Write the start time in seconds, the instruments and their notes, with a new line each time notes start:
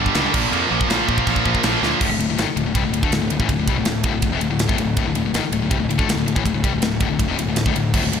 Already playing: distorted electric guitar G2 D3 G3
0.06 kick
0.15 picked electric bass C#2, distorted electric guitar G2 D3 G3, snare, china
0.33 picked electric bass A#1, distorted electric guitar A#2 F3 A#3, kick, crash
0.51 picked electric bass F2, distorted electric guitar A#2 F3 A#3, china
0.70 picked electric bass A#1, distorted electric guitar A#2 F3 A#3
0.81 kick
0.89 picked electric bass A#1, distorted electric guitar A#2 F3 A#3, snare, china
1.08 picked electric bass A#1, distorted electric guitar A#2 F3 A#3, kick
1.18 kick
1.26 picked electric bass A#1, distorted electric guitar A#2 F3 A#3, kick, china
1.36 kick
1.45 picked electric bass A#1, distorted electric guitar A#2 F3 A#3, kick
1.55 kick
1.63 picked electric bass A#1, distorted electric guitar A#2 F3 A#3, snare, china
1.81 picked electric bass D2, distorted electric guitar A#2 F3 A#3, snare
2.01 picked electric bass D1, distorted electric guitar D2 A2, kick, crash
2.10 picked electric bass D1, distorted electric guitar D2 A2
2.18 picked electric bass D1, distorted electric guitar D2 A2, ride
2.28 picked electric bass D1, distorted electric guitar D2 A2
2.37 picked electric bass G#1, distorted electric guitar G#2 D#3, snare, ride
2.48 muted distorted electric guitar stroke, muted picked electric bass stroke
2.56 picked electric bass D1, distorted electric guitar D2 A2, ride
2.66 picked electric bass D1, distorted electric guitar D2 A2
2.75 picked electric bass C2, distorted electric guitar C3 G3, kick, ride
2.84 picked electric bass D1, distorted electric guitar D2 A2
2.93 picked electric bass D1, distorted electric guitar D2 A2, ride
3.03 picked electric bass D2, distorted electric guitar D3 A3, kick
3.11 picked electric bass D1, distorted electric guitar D2 A2, snare, ride
3.21 picked electric bass D1, distorted electric guitar D2 A2
3.30 picked electric bass D1, distorted electric guitar D2 A2, ride
3.40 picked electric bass A1, distorted electric guitar A2 E3, kick
3.49 picked electric bass D1, distorted electric guitar D2 A2, kick, ride
3.58 picked electric bass D1, distorted electric guitar D2 A2
3.68 picked electric bass C2, distorted electric guitar C3 G3, kick, ride
3.77 picked electric bass D1, distorted electric guitar D2 A2
3.85 picked electric bass D1, distorted electric guitar D2 A2, snare, ride
4.04 picked electric bass D1, distorted electric guitar D2 A2, kick, ride
4.13 picked electric bass D1, distorted electric guitar D2 A2
4.22 picked electric bass D1, distorted electric guitar D2 A2, kick, ride
4.31 picked electric bass F1, distorted electric guitar F2 C3
4.40 picked electric bass D1, distorted electric guitar D2 A2, ride
4.50 picked electric bass D1, distorted electric guitar D2 A2
4.59 snare, ride
4.68 picked electric bass D1, distorted electric guitar D2 A2, kick
4.78 picked electric bass D1, distorted electric guitar D2 A2, ride
4.97 picked electric bass D1, distorted electric guitar D2 A2, kick, ride
5.05 picked electric bass D1, distorted electric guitar D2 A2
5.15 picked electric bass D1, distorted electric guitar D2 A2, ride
5.24 picked electric bass D1, distorted electric guitar D2 A2
5.34 picked electric bass G#1, distorted electric guitar G#2 D#3, snare, ride
5.43 muted picked electric bass stroke, muted distorted electric guitar stroke
5.52 picked electric bass D1, distorted electric guitar D2 A2, ride
5.61 picked electric bass D1, distorted electric guitar D2 A2
5.70 picked electric bass C2, distorted electric guitar C3 G3, kick, ride
5.79 picked electric bass D1, distorted electric guitar D2 A2
5.89 picked electric bass D1, distorted electric guitar D2 A2, ride
5.98 picked electric bass D2, distorted electric guitar D3 A3, kick
6.08 picked electric bass D1, distorted electric guitar D2 A2, snare, ride
6.17 picked electric bass D1, distorted electric guitar D2 A2
6.26 picked electric bass D1, distorted electric guitar D2 A2, ride
6.35 picked electric bass A1, distorted electric guitar A2 E3, kick
6.44 picked electric bass D1, distorted electric guitar D2 A2, kick, ride
6.54 picked electric bass D1, distorted electric guitar D2 A2
6.63 picked electric bass C2, distorted electric guitar C3 G3, kick, ride
6.73 picked electric bass D1, distorted electric guitar D2 A2
6.82 picked electric bass D1, distorted electric guitar D2 A2, snare, ride
7.00 picked electric bass D1, distorted electric guitar D2 A2, kick, ride
7.09 picked electric bass D1, distorted electric guitar D2 A2
7.19 picked electric bass D1, distorted electric guitar D2 A2, kick, ride
7.28 picked electric bass F1, distorted electric guitar F2 C3
7.36 picked electric bass D1, distorted electric guitar D2 A2, ride
7.46 picked electric bass D1, distorted electric guitar D2 A2
7.56 snare, ride
7.66 picked electric bass D1, distorted electric guitar D2 A2, kick
7.73 picked electric bass D1, distorted electric guitar D2 A2, ride
7.94 picked electric bass D1, distorted electric guitar D2 A2, kick, crash
8.02 picked electric bass D1, distorted electric guitar D2 A2
8.11 picked electric bass D1, distorted electric guitar D2 A2, ride